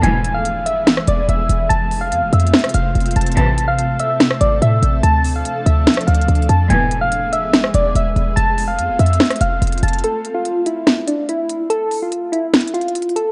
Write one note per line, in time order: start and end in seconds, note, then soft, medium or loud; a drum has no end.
0.03 1.04 E1 loud
0.03 0.33 G#2 medium
0.03 0.33 B2 loud
0.03 0.33 E3 loud
0.03 1.69 E3 medium
0.03 1.69 G#3 medium
0.03 1.69 B3 medium
0.03 1.69 G#4 medium
0.03 0.33 G#5 medium
0.03 closed hi-hat medium
0.25 closed hi-hat medium
0.35 0.64 F5 medium
0.45 closed hi-hat medium
0.66 1.05 E5 medium
0.66 closed hi-hat medium
0.87 snare loud
0.87 closed hi-hat medium
0.97 cross-stick loud
1.07 1.28 E1 loud
1.07 1.25 D5 medium
1.07 closed hi-hat medium
1.29 1.49 E1 loud
1.29 1.68 E5 medium
1.29 closed hi-hat medium
1.49 1.69 E1 loud
1.49 closed hi-hat medium
1.69 2.14 F1 loud
1.69 5.00 C3 medium
1.69 6.66 A3 medium
1.69 5.00 C4 medium
1.69 3.35 F4 medium
1.69 1.99 A5 loud
1.69 closed hi-hat medium
1.91 open hi-hat medium
2.01 2.31 F5 medium
2.12 2.24 F2 loud
2.12 closed hi-hat medium
2.22 2.32 F1 loud
2.33 2.53 F2 loud
2.33 2.72 E5 medium
2.33 closed hi-hat medium
2.40 closed hi-hat medium
2.47 closed hi-hat medium
2.54 cross-stick medium
2.54 snare loud
2.54 closed hi-hat soft
2.59 closed hi-hat medium
2.64 cross-stick loud
2.64 closed hi-hat medium
2.69 closed hi-hat medium
2.74 2.94 F1 loud
2.74 3.14 F5 medium
2.74 closed hi-hat loud
2.95 3.15 F1 loud
2.95 closed hi-hat medium
3.01 closed hi-hat medium
3.06 closed hi-hat medium
3.11 closed hi-hat medium
3.16 3.36 F1 loud
3.16 3.33 A5 medium
3.16 closed hi-hat medium
3.21 closed hi-hat medium
3.27 closed hi-hat medium
3.32 closed hi-hat soft
3.37 3.97 A1 loud
3.37 3.67 A2 medium
3.37 3.67 C3 loud
3.37 3.67 E3 loud
3.37 6.67 A4 medium
3.37 3.67 A5 loud
3.37 closed hi-hat medium
3.58 closed hi-hat medium
3.68 3.97 F5 medium
3.79 closed hi-hat medium
4.00 4.39 E5 medium
4.00 closed hi-hat medium
4.20 snare loud
4.20 closed hi-hat medium
4.31 cross-stick loud
4.41 4.61 G#1 loud
4.41 4.58 D5 medium
4.41 closed hi-hat medium
4.62 4.82 A2 loud
4.62 5.01 E5 medium
4.62 closed hi-hat medium
4.83 5.03 A1 loud
4.83 closed hi-hat medium
5.04 5.44 D2 loud
5.04 6.69 F3 medium
5.04 6.69 D4 medium
5.04 5.33 A5 loud
5.04 closed hi-hat medium
5.25 open hi-hat medium
5.36 5.65 F5 medium
5.45 closed hi-hat medium
5.66 5.86 D2 loud
5.66 6.05 E5 medium
5.66 closed hi-hat medium
5.87 snare loud
5.87 closed hi-hat medium
5.94 cross-stick loud
5.94 closed hi-hat medium
6.01 closed hi-hat medium
6.07 6.28 D2 loud
6.07 6.47 F5 medium
6.07 closed hi-hat medium
6.15 closed hi-hat soft
6.22 closed hi-hat soft
6.29 6.49 D2 loud
6.29 closed hi-hat medium
6.36 closed hi-hat medium
6.43 closed hi-hat soft
6.49 6.70 F2 loud
6.49 6.66 A5 medium
6.49 closed hi-hat medium
6.70 7.71 E1 loud
6.70 7.00 G#2 medium
6.70 7.00 B2 loud
6.70 7.00 E3 loud
6.70 8.35 G#3 medium
6.70 8.35 B3 medium
6.70 8.35 G#4 medium
6.70 7.00 G#5 medium
6.70 closed hi-hat medium
6.91 closed hi-hat medium
7.01 7.31 F5 medium
7.12 closed hi-hat medium
7.33 7.72 E5 medium
7.33 closed hi-hat medium
7.54 snare loud
7.54 closed hi-hat medium
7.64 cross-stick loud
7.74 7.94 E1 loud
7.74 7.92 D5 medium
7.74 closed hi-hat medium
7.95 8.15 E1 loud
7.95 8.35 E5 medium
7.95 closed hi-hat medium
8.16 8.36 E1 loud
8.16 closed hi-hat medium
8.36 8.80 F1 loud
8.36 10.02 A3 medium
8.36 10.02 C4 medium
8.36 10.02 F4 medium
8.36 8.66 A5 loud
8.36 closed hi-hat medium
8.58 open hi-hat medium
8.68 8.97 F5 medium
8.79 8.90 F2 loud
8.79 closed hi-hat medium
8.89 8.99 F1 loud
8.99 9.19 F2 loud
8.99 9.39 E5 medium
8.99 closed hi-hat medium
9.06 closed hi-hat medium
9.13 closed hi-hat medium
9.20 cross-stick medium
9.20 snare loud
9.20 closed hi-hat soft
9.25 closed hi-hat medium
9.31 cross-stick loud
9.31 closed hi-hat medium
9.36 closed hi-hat medium
9.41 9.61 F1 loud
9.41 9.80 F5 medium
9.41 closed hi-hat medium
9.62 9.82 F1 loud
9.62 closed hi-hat medium
9.67 closed hi-hat medium
9.72 closed hi-hat medium
9.78 closed hi-hat medium
9.83 10.03 F1 loud
9.83 10.00 A5 medium
9.83 closed hi-hat medium
9.88 closed hi-hat medium
9.93 closed hi-hat medium
9.98 closed hi-hat soft
10.04 10.33 A4 medium
10.04 closed hi-hat medium
10.25 closed hi-hat medium
10.34 10.64 F4 medium
10.45 closed hi-hat medium
10.66 11.06 E4 medium
10.66 closed hi-hat medium
10.87 snare loud
10.87 closed hi-hat medium
11.07 11.25 D4 medium
11.07 closed hi-hat medium
11.29 11.68 E4 medium
11.29 closed hi-hat medium
11.50 closed hi-hat medium
11.70 12.00 A4 loud
11.70 closed hi-hat medium
11.91 open hi-hat medium
12.02 12.31 F4 medium
12.12 closed hi-hat medium
12.32 12.72 E4 medium
12.32 closed hi-hat medium
12.54 snare loud
12.54 closed hi-hat medium
12.61 closed hi-hat medium
12.67 closed hi-hat medium
12.74 13.13 F4 medium
12.74 closed hi-hat medium
12.81 closed hi-hat soft
12.88 closed hi-hat soft
12.95 closed hi-hat medium
13.02 closed hi-hat medium
13.09 closed hi-hat soft
13.16 13.32 A4 medium
13.16 closed hi-hat medium